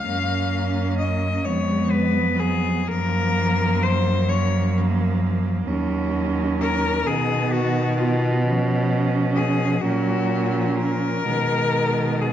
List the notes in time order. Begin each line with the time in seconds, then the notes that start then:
Already playing: F5
0.06 F#2 A#3 C#4
0.98 D#5
1.45 F2 G#3 B3 C#5
1.91 B4
2.17 F#3
2.40 G#4
2.87 F#2 F3 A#3 A#4
3.83 C5
4.28 F3 A#3 C#5
5.66 D#2 F#3 C#4
6.61 A#4
7.04 B2 D#3 B3 G#4
7.52 F#4
7.98 F4
8.46 F3 C#4
9.35 G#4
9.81 A#2 F#3 C#4 F#4
10.54 F3
10.76 A#4
11.25 B2 D#3 G#3
12.22 G#4